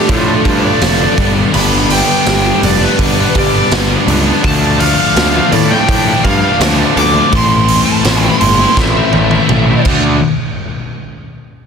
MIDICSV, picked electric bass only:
0, 0, Header, 1, 2, 480
1, 0, Start_track
1, 0, Tempo, 722892
1, 1027, Time_signature, 4, 2, 24, 8
1, 7746, End_track
2, 0, Start_track
2, 0, Title_t, "Picked electric bass"
2, 0, Program_c, 0, 34
2, 62, Note_on_c, 0, 45, 92
2, 216, Note_off_c, 0, 45, 0
2, 302, Note_on_c, 0, 43, 84
2, 455, Note_off_c, 0, 43, 0
2, 542, Note_on_c, 0, 29, 88
2, 695, Note_off_c, 0, 29, 0
2, 782, Note_on_c, 0, 31, 87
2, 935, Note_off_c, 0, 31, 0
2, 1023, Note_on_c, 0, 31, 94
2, 1329, Note_off_c, 0, 31, 0
2, 1506, Note_on_c, 0, 31, 91
2, 1659, Note_off_c, 0, 31, 0
2, 1744, Note_on_c, 0, 29, 89
2, 1897, Note_off_c, 0, 29, 0
2, 1984, Note_on_c, 0, 31, 94
2, 2138, Note_off_c, 0, 31, 0
2, 2227, Note_on_c, 0, 31, 87
2, 2380, Note_off_c, 0, 31, 0
2, 2466, Note_on_c, 0, 31, 90
2, 2619, Note_off_c, 0, 31, 0
2, 2702, Note_on_c, 0, 37, 92
2, 2857, Note_off_c, 0, 37, 0
2, 2949, Note_on_c, 0, 38, 96
2, 3254, Note_off_c, 0, 38, 0
2, 3426, Note_on_c, 0, 38, 94
2, 3580, Note_off_c, 0, 38, 0
2, 3669, Note_on_c, 0, 45, 86
2, 3822, Note_off_c, 0, 45, 0
2, 3909, Note_on_c, 0, 45, 98
2, 4061, Note_off_c, 0, 45, 0
2, 4146, Note_on_c, 0, 43, 90
2, 4299, Note_off_c, 0, 43, 0
2, 4380, Note_on_c, 0, 38, 88
2, 4535, Note_off_c, 0, 38, 0
2, 4624, Note_on_c, 0, 38, 91
2, 4778, Note_off_c, 0, 38, 0
2, 4866, Note_on_c, 0, 33, 97
2, 5172, Note_off_c, 0, 33, 0
2, 5344, Note_on_c, 0, 33, 96
2, 5499, Note_off_c, 0, 33, 0
2, 5589, Note_on_c, 0, 31, 90
2, 5741, Note_off_c, 0, 31, 0
2, 5822, Note_on_c, 0, 33, 102
2, 5977, Note_off_c, 0, 33, 0
2, 6068, Note_on_c, 0, 33, 85
2, 6221, Note_off_c, 0, 33, 0
2, 6310, Note_on_c, 0, 33, 92
2, 6462, Note_off_c, 0, 33, 0
2, 6544, Note_on_c, 0, 38, 93
2, 6770, Note_off_c, 0, 38, 0
2, 7746, End_track
0, 0, End_of_file